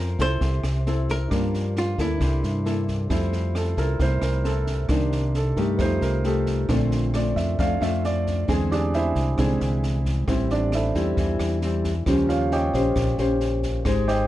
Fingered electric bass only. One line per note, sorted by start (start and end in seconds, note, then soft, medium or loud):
0.00 0.15 F2 medium
0.19 0.40 C2 medium
0.41 0.62 C2 medium
0.63 1.27 C2 medium
1.31 1.94 G2 medium
1.98 2.19 D2 medium
2.20 2.41 C2 medium
2.43 3.06 G2 medium
3.10 3.73 F2 medium
3.77 3.98 C2 medium
3.99 4.20 C2 medium
4.21 4.85 C2 medium
4.89 5.53 C2 medium
5.56 5.77 G2 medium
5.79 6.00 F2 medium
6.01 6.65 C2 medium
6.69 7.32 A#1 medium
7.36 7.57 F2 medium
7.59 7.80 F2 medium
7.81 8.45 F2 medium
8.48 9.12 E2 medium
9.15 9.36 C2 medium
9.38 9.59 C2 medium
9.61 10.24 C2 medium
10.28 10.91 A1 medium
10.95 11.16 E2 medium
11.17 11.38 E2 medium
11.40 12.03 E2 medium
12.06 12.70 D#2 medium
12.73 12.95 A#1 medium
12.96 13.17 A#1 medium
13.18 13.82 A#1 medium
13.85 14.27 G#1 medium